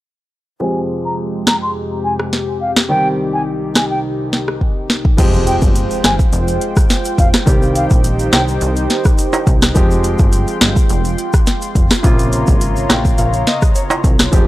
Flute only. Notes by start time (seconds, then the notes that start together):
0.61 G#5
1.05 A#5
1.47 A#5
1.62 C6
2.04 G#5
2.61 F5
2.90 G5
3.33 G#5
3.76 G#5
3.90 G5
5.47 G5
6.04 G#5
7.19 F5
7.76 F5
8.33 G5